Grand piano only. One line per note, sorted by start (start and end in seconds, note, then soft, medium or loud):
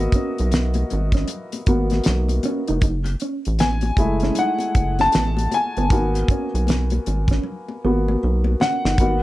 0.00 0.86 A#3 medium
0.00 0.87 B3 soft
0.00 0.87 F#4 medium
0.00 1.63 D#5 medium
0.00 2.84 E5 medium
0.00 2.85 F#5 medium
1.68 2.02 A#3 soft
1.68 2.02 B3 soft
1.68 2.02 F#4 medium
3.60 4.39 G#5 medium
3.98 5.09 G#3 medium
3.98 5.10 A3 soft
3.98 5.10 E4 medium
4.39 4.96 F#5 medium
5.01 5.54 A5 loud
5.54 7.80 G#5 medium
5.91 6.45 A#3 medium
5.91 6.45 B3 medium
5.91 6.46 F#4 medium
7.85 8.19 A#3 soft
7.85 8.19 B3 soft
7.85 8.19 F#4 soft
8.61 9.23 F#5 medium
9.00 9.23 A#3 medium
9.00 9.23 B3 soft
9.00 9.23 F#4 medium